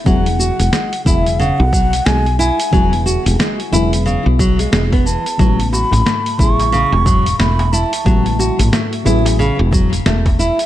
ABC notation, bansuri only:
X:1
M:4/4
L:1/8
Q:"Swing 16ths" 1/4=90
K:Emix
V:1 name="Bansuri"
f3 e f2 g g- | g z6 a- | a b2 c'3 b a- | a2 z4 z e |]